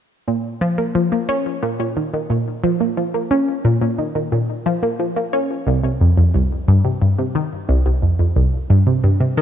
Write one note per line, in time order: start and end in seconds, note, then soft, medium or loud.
0.28 0.36 A#2 medium
0.61 0.69 F3 medium
0.78 0.83 A#3 medium
0.95 1.07 F3 medium
1.12 1.17 A#3 medium
1.29 1.37 C#4 loud
1.63 1.75 A#2 medium
1.80 1.84 A#2 medium
1.97 2.05 D#3 medium
2.14 2.18 D#3 medium
2.30 2.38 A#2 medium
2.64 2.72 F3 medium
2.80 2.85 A#3 medium
2.97 3.09 F3 medium
3.14 3.19 A#3 medium
3.31 3.39 C#4 medium
3.65 3.77 A#2 medium
3.81 3.86 A#2 medium
3.98 4.07 D#3 medium
4.15 4.20 D#3 medium
4.32 4.40 A#2 medium
4.66 4.74 F3 medium
4.83 4.88 A#3 medium
4.99 5.12 F3 medium
5.16 5.21 A#3 medium
5.33 5.41 C#4 medium
5.67 5.79 C2 loud
5.84 5.89 C2 medium
6.01 6.09 F2 medium
6.17 6.22 F2 medium
6.34 6.42 C2 medium
6.68 6.76 G2 medium
6.85 6.90 C3 medium
7.02 7.14 G2 medium
7.18 7.23 C3 medium
7.35 7.43 D#3 medium
7.69 7.81 C2 medium
7.86 7.91 C2 medium
8.02 8.11 F2 medium
8.19 8.24 F2 medium
8.36 8.45 C2 medium
8.70 8.78 G2 medium
8.87 8.92 C3 medium
9.04 9.16 G2 medium
9.20 9.26 C3 medium
9.37 9.42 D#3 loud